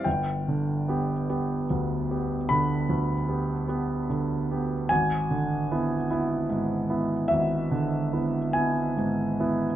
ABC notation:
X:1
M:12/8
L:1/8
Q:3/8=49
K:Ephr
V:1 name="Grand piano"
g6 b6 | ^g6 e3 g2 z |]
V:2 name="Grand piano"
G,,, D, [B,G] [B,G] D,, [B,G] D, D,, [B,G] [B,G] D, [B,G] | ^G,,, D, [B,E] [B,E] ^G,, [B,E] G,,, D, [B,E] [B,E] G,, [B,E] |]